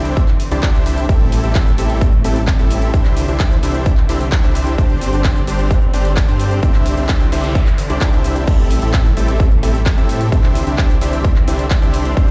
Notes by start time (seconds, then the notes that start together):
Already playing: C2 D3 E3 C4 D4 E4 G4 C5 E5
0.05 closed hi-hat, cabasa
0.17 kick, closed hi-hat, cabasa
0.28 clap, closed hi-hat
0.40 open hi-hat, cabasa
0.51 C2 D4 E4 G4 C5 D5, closed hi-hat, cabasa
0.63 kick, clap, closed hi-hat, cabasa
0.74 C2 D4 E4 G4 C5 E5, closed hi-hat, cabasa
0.86 C2 D4 E4 G4 C5 E5, open hi-hat, cabasa
0.98 closed hi-hat, cabasa
1.09 A1 C3 G3 A3 C4 E4 G4 A4 E5, kick, closed hi-hat, cabasa
1.21 closed hi-hat
1.32 open hi-hat, cabasa
1.44 A1 C4 E4 G4 A4 E5, closed hi-hat, cabasa
1.55 kick, clap, closed hi-hat, cabasa
1.67 closed hi-hat, cabasa
1.78 A1 C4 E4 G4 A4 E5, open hi-hat, cabasa
1.90 closed hi-hat, cabasa
2.01 kick, closed hi-hat, cabasa
2.13 closed hi-hat
2.24 A1 C4 E4 G4 A4 E5, open hi-hat, cabasa
2.36 closed hi-hat, cabasa
2.48 kick, clap, closed hi-hat, cabasa
2.59 A1 C4 E4 G4 A4 E5, closed hi-hat, cabasa
2.71 open hi-hat, cabasa
2.82 closed hi-hat, cabasa
2.93 C2 D3 E3 C4 D4 E4 G4 C5 E5, kick, closed hi-hat, cabasa
3.05 clap, closed hi-hat
3.17 open hi-hat, cabasa
3.28 C2 D4 E4 G4 C5 E5, closed hi-hat, cabasa
3.40 kick, clap, closed hi-hat, cabasa
3.51 closed hi-hat, cabasa
3.63 C2 D4 E4 G4 C5 E5, open hi-hat, cabasa
3.74 closed hi-hat, cabasa
3.86 kick, closed hi-hat, cabasa
3.97 clap, closed hi-hat
4.09 C2 D4 E4 G4 C5 E5, open hi-hat, cabasa
4.21 closed hi-hat, cabasa
4.32 kick, clap, closed hi-hat, cabasa
4.44 C2 D4 E4 G4 C5 E5, closed hi-hat, cabasa
4.55 open hi-hat, cabasa
4.67 closed hi-hat, cabasa
4.78 G1 G3 D4 G4 C5, kick, closed hi-hat, cabasa
4.90 closed hi-hat
5.01 open hi-hat, cabasa
5.13 G1 D4 G4 C5, closed hi-hat, cabasa
5.24 kick, clap, closed hi-hat, cabasa
5.36 closed hi-hat, cabasa
5.47 G1 D4 G4 C5, open hi-hat, cabasa
5.59 closed hi-hat, cabasa
5.71 kick, closed hi-hat, cabasa
5.82 closed hi-hat
5.94 G1 D4 G4 C5, open hi-hat, cabasa
6.05 closed hi-hat, cabasa
6.17 kick, clap, closed hi-hat, cabasa
6.28 G2 D4 G4 C5, closed hi-hat, cabasa
6.40 open hi-hat, cabasa
6.51 closed hi-hat, cabasa
6.63 C2 D3 E3 D4 E4 G4 C5 E5, kick, closed hi-hat, noise sweep, cabasa
6.74 clap, closed hi-hat
6.86 open hi-hat, cabasa
6.97 C2 D4 E4 G4 C5 E5, closed hi-hat, cabasa
7.09 kick, clap, closed hi-hat, cabasa
7.21 closed hi-hat, cabasa
7.32 C2 D4 E4 G4 C5 E5, open hi-hat, cabasa
7.44 closed hi-hat, cabasa
7.55 kick, closed hi-hat, cabasa
7.67 clap, closed hi-hat, cabasa
7.78 open hi-hat, cabasa
7.90 C2 D4 E4 G4 C5 D5, closed hi-hat, cabasa
8.01 kick, clap, closed hi-hat, cabasa
8.13 C2 D4 E4 G4 C5 E5, closed hi-hat, cabasa
8.24 C2 D4 E4 G4 C5 E5, open hi-hat, cabasa
8.36 closed hi-hat, cabasa
8.47 A1 C3 G3 A3 C4 E4 G4 A4 E5, kick, closed hi-hat, crash, cabasa
8.59 closed hi-hat
8.71 open hi-hat, cabasa
8.82 A1 C4 E4 G4 A4 E5, closed hi-hat, cabasa
8.94 kick, clap, closed hi-hat, cabasa
9.05 closed hi-hat, cabasa
9.17 A1 C4 E4 G4 A4 E5, open hi-hat, cabasa
9.28 closed hi-hat, cabasa
9.40 kick, closed hi-hat, cabasa
9.52 closed hi-hat
9.63 A1 C4 E4 G4 A4 E5, open hi-hat, cabasa
9.75 closed hi-hat, cabasa
9.86 kick, clap, closed hi-hat, cabasa
9.98 A2 C4 E4 G4 A4 E5, closed hi-hat, cabasa
10.09 open hi-hat, cabasa
10.21 closed hi-hat, cabasa
10.32 C2 D3 E3 C4 D4 E4 G4 C5 E5, kick, closed hi-hat, cabasa
10.44 clap, closed hi-hat
10.55 open hi-hat, cabasa
10.67 C2 D4 E4 G4 C5 E5, closed hi-hat, cabasa
10.78 kick, clap, closed hi-hat, cabasa
10.90 closed hi-hat, cabasa
11.01 C2 D4 E4 G4 C5 E5, open hi-hat, cabasa
11.13 closed hi-hat, cabasa
11.24 kick, closed hi-hat, cabasa
11.36 clap, closed hi-hat
11.47 C2 D4 E4 G4 C5 E5, open hi-hat, cabasa
11.59 closed hi-hat, cabasa
11.71 kick, clap, closed hi-hat, cabasa
11.82 C2 D4 E4 G4 C5 E5, closed hi-hat, cabasa
11.94 open hi-hat, cabasa
12.05 closed hi-hat, cabasa
12.17 G1 G3 D4 G4 C5, kick, closed hi-hat, cabasa